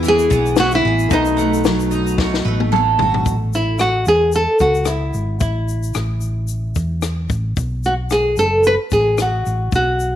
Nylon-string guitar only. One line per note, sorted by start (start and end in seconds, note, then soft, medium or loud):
0.08 0.59 G#4 loud
0.60 0.72 F#4 medium
0.75 1.14 E4 medium
1.13 2.70 D#4 medium
3.55 3.80 E4 medium
3.81 4.08 F#4 medium
4.08 4.35 G#4 medium
4.36 4.61 A4 medium
4.61 4.89 F#4 medium
4.87 5.39 E4 medium
5.40 6.99 E4 medium
7.86 7.93 F#4 medium
8.12 8.37 G#4 medium
8.39 8.63 A4 medium
8.67 8.74 B4 medium
8.93 9.20 G#4 medium
9.22 9.74 F#4 medium
9.76 10.16 F#4 medium